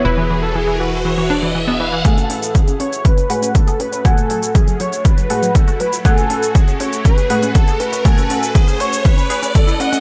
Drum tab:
HH |----------------|xxoxxxoxxxoxxxox|xxoxxxoxxxoxxxox|xxoxxxoxxxoxxxox|
SH |----------------|xx-xxx-xxx-xxx-x|xx-xxx-xxx-xxx-x|xx-xxx-xxx-xxx-x|
BD |----------------|o---o---o---o---|o---o---o---o---|o---o---o---o---|

HH |xxoxxxoxxxoxxxox|
SH |xx-xxx-xxx-xxx-x|
BD |o---o---o---o---|